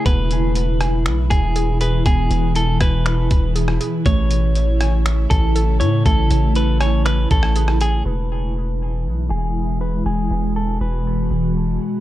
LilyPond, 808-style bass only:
\new Staff \with { instrumentName = "808-style bass" } { \clef bass \time 4/4 \key e \major \tempo 4 = 120 e,,2 b,,8 e,,4. | e,,8 e,,4 e,,4 e,,4 r8 | a,,2~ a,,8 a,,4 a,8 | a,,8 a,,2 a,,4. |
e,,2 b,,8 e,,4. | e,,8 e,,4 e,,4 e,,4 r8 | }